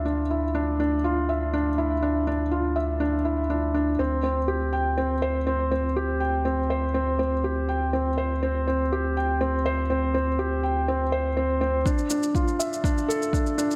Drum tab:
SH |----------------|----------------|----------------|----------------|
BD |----------------|----------------|----------------|----------------|

SH |----------------|----------------|xxxxxxxxxxxxxxxx|
BD |----------------|----------------|o---o---o---o---|